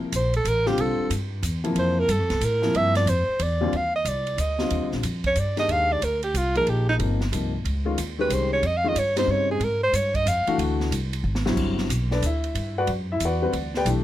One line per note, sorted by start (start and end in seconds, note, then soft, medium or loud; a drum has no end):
0.00 0.10 C3 medium
0.00 0.10 F3 medium
0.00 0.10 A#3 medium
0.00 0.11 E4 medium
0.00 muted upright bass stroke soft
0.12 0.44 A#1 medium
0.12 0.34 C5 medium
0.12 hi-hat pedal medium
0.12 ride medium
0.34 0.50 A4 medium
0.34 ride soft
0.45 0.77 A1 medium
0.45 0.69 A#4 medium
0.45 hi-hat pedal medium
0.45 ride medium
0.66 1.08 D3 medium
0.66 1.08 G3 medium
0.66 1.08 C4 medium
0.66 1.09 F4 medium
0.66 0.82 G4 loud
0.66 snare soft
0.78 0.97 C2 medium
0.78 1.12 A4 medium
0.78 ride medium
0.98 muted upright bass stroke soft
1.10 1.42 G2 medium
1.10 hi-hat pedal medium
1.10 ride medium
1.42 1.75 E2 medium
1.42 hi-hat pedal medium
1.42 ride medium
1.64 2.06 C3 medium
1.64 2.06 F3 medium
1.64 2.06 A#3 medium
1.64 2.06 E4 medium
1.64 ride soft
1.75 2.07 F2 medium
1.75 2.01 C5 medium
1.75 ride medium
1.99 2.13 A#4 loud
2.08 2.19 G2 medium
2.08 2.46 A4 medium
2.08 hi-hat pedal medium
2.08 ride medium
2.19 2.29 F2 medium
2.30 2.40 C2 medium
2.30 snare soft
2.30 ride soft
2.41 2.73 A2 medium
2.41 2.79 A#4 medium
2.41 hi-hat pedal medium
2.41 ride medium
2.62 3.04 C3 medium
2.62 3.04 F3 medium
2.62 3.05 A#3 medium
2.62 3.05 E4 medium
2.62 snare soft
2.74 3.05 G2 medium
2.74 2.96 E5 loud
2.74 ride medium
2.95 3.11 D5 loud
2.95 snare soft
2.95 ride soft
3.06 3.26 F2 medium
3.06 3.44 C5 medium
3.06 hi-hat pedal medium
3.06 ride medium
3.28 muted upright bass stroke soft
3.39 3.71 E2 medium
3.39 3.78 D5 medium
3.39 ride medium
3.61 3.71 D#2 medium
3.61 3.71 D3 medium
3.61 3.71 G3 medium
3.61 3.72 C4 medium
3.61 3.72 F4 medium
3.73 4.04 D#2 medium
3.73 3.95 F5 loud
3.73 ride soft
3.96 4.09 D#5 medium
4.05 4.37 C2 medium
4.05 4.42 D5 medium
4.05 hi-hat pedal medium
4.05 ride medium
4.27 ride soft
4.38 4.69 D2 medium
4.38 4.93 D#5 medium
4.38 hi-hat pedal medium
4.38 ride medium
4.59 5.01 D3 medium
4.59 5.01 G3 medium
4.59 5.01 C4 soft
4.59 5.02 F4 medium
4.59 snare medium
4.70 4.82 D#2 medium
4.70 ride medium
4.82 4.92 D2 medium
4.92 5.03 A#1 medium
4.92 snare soft
5.03 5.35 F2 medium
5.03 hi-hat pedal soft
5.03 ride medium
5.24 5.41 C#5 medium
5.24 kick medium
5.24 ride soft
5.35 5.68 G2 medium
5.35 hi-hat pedal medium
5.35 ride medium
5.40 5.59 D5 medium
5.56 5.99 D#3 medium
5.56 5.99 G#3 medium
5.56 5.99 D4 medium
5.56 5.99 G4 medium
5.56 5.73 D#5 loud
5.56 snare soft
5.56 ride soft
5.68 6.00 D#2 medium
5.68 5.94 F5 loud
5.68 ride medium
5.92 6.06 D5 loud
6.02 6.33 D2 medium
6.02 6.23 A#4 medium
6.02 hi-hat pedal medium
6.02 ride medium
6.23 6.39 G4 medium
6.23 ride soft
6.34 6.66 C2 medium
6.34 6.57 F4 medium
6.34 hi-hat pedal medium
6.34 ride medium
6.55 6.97 F3 medium
6.55 6.97 A#3 medium
6.55 6.97 D#4 medium
6.55 6.98 G#4 medium
6.55 6.71 A#4 loud
6.55 ride soft
6.67 6.98 A#1 medium
6.67 6.88 G4 medium
6.67 ride medium
6.89 6.96 D#4 loud
6.98 7.31 G1 medium
6.98 7.18 C3 medium
6.98 7.18 F3 medium
6.98 7.18 A#3 medium
6.98 7.19 D#4 medium
6.98 ride medium
7.21 snare soft
7.32 7.64 C2 medium
7.32 7.51 C3 medium
7.32 7.51 F3 soft
7.32 7.51 A#3 soft
7.32 7.51 D#4 medium
7.32 hi-hat pedal medium
7.32 ride medium
7.64 7.96 C#2 medium
7.64 ride medium
7.85 7.96 D#3 medium
7.85 7.96 G#3 medium
7.85 7.96 C#4 medium
7.85 7.96 F4 medium
7.98 8.29 D#2 medium
7.98 hi-hat pedal medium
7.98 ride medium
8.19 8.61 D#3 medium
8.19 8.61 G#3 medium
8.19 8.61 C#4 medium
8.19 8.61 G4 medium
8.19 8.35 B4 loud
8.30 8.62 C2 medium
8.30 8.52 C5 medium
8.30 hi-hat pedal soft
8.30 ride medium
8.53 8.68 C#5 medium
8.62 8.94 F2 medium
8.62 ride medium
8.66 8.78 D#5 medium
8.77 8.90 F5 medium
8.84 8.95 D#3 medium
8.84 8.95 G#3 medium
8.84 8.95 C#4 medium
8.84 8.95 F4 medium
8.88 9.00 D#5 loud
8.95 9.27 G2 medium
8.95 9.18 C#5 medium
8.95 hi-hat pedal medium
8.95 ride medium
9.16 9.59 C#3 medium
9.16 9.59 G3 medium
9.16 9.59 C4 medium
9.16 9.59 D#4 medium
9.16 9.32 C5 loud
9.16 snare medium
9.16 ride medium
9.27 9.59 G2 medium
9.27 9.51 C#5 loud
9.51 9.66 G#4 medium
9.60 9.92 G#2 medium
9.60 ride medium
9.64 9.83 A#4 medium
9.83 9.97 C5 loud
9.93 10.25 G2 medium
9.93 10.17 C#5 medium
9.93 hi-hat pedal medium
9.93 ride medium
10.14 10.30 D#5 loud
10.14 kick medium
10.14 ride soft
10.26 10.46 F2 medium
10.26 10.60 F5 medium
10.26 hi-hat pedal medium
10.26 ride medium
10.47 10.89 E3 medium
10.47 10.89 A3 medium
10.47 10.90 D4 medium
10.47 10.90 F#4 medium
10.47 muted upright bass stroke soft
10.47 ride soft
10.58 10.90 D2 medium
10.58 ride medium
10.80 snare soft
10.91 11.23 C2 medium
10.91 hi-hat pedal medium
10.91 ride medium
11.13 ride soft
11.24 11.56 G#1 medium
11.35 snare medium
11.45 11.87 D3 medium
11.45 11.87 F#3 medium
11.45 11.88 G3 medium
11.45 11.88 C4 medium
11.45 11.88 E4 medium
11.45 snare medium
11.57 11.89 G1 medium
11.57 kick medium
11.57 crash medium
11.78 snare soft
11.89 12.21 B1 medium
11.89 hi-hat pedal medium
11.89 ride medium
12.11 12.23 D4 medium
12.11 12.23 A4 medium
12.11 12.23 B4 medium
12.11 12.23 D5 medium
12.11 snare soft
12.22 12.54 D2 medium
12.22 12.74 E4 medium
12.22 12.74 E5 medium
12.22 hi-hat pedal medium
12.22 ride medium
12.44 ride soft
12.55 12.87 G2 medium
12.55 ride medium
12.78 12.89 F#4 medium
12.78 12.88 B4 medium
12.78 12.89 D5 medium
12.78 12.88 F#5 medium
12.87 13.19 F#2 medium
12.87 ride medium
13.12 13.22 E4 medium
13.12 13.22 E5 medium
13.20 13.52 E2 medium
13.20 hi-hat pedal medium
13.20 ride medium
13.25 13.41 F#4 medium
13.25 13.41 B4 medium
13.25 13.73 D5 medium
13.25 13.73 F#5 medium
13.42 13.52 G3 medium
13.42 13.52 C4 medium
13.42 13.52 F#4 medium
13.42 13.53 B4 medium
13.52 13.84 D2 medium
13.52 ride medium
13.74 13.85 G4 medium
13.74 13.87 B4 medium
13.74 13.87 D5 medium
13.74 13.87 G5 loud
13.74 snare soft
13.85 14.04 B1 medium
13.85 14.04 E3 medium
13.85 14.04 A3 medium
13.85 14.04 D4 medium
13.85 14.04 G4 medium
13.85 hi-hat pedal medium
13.85 ride medium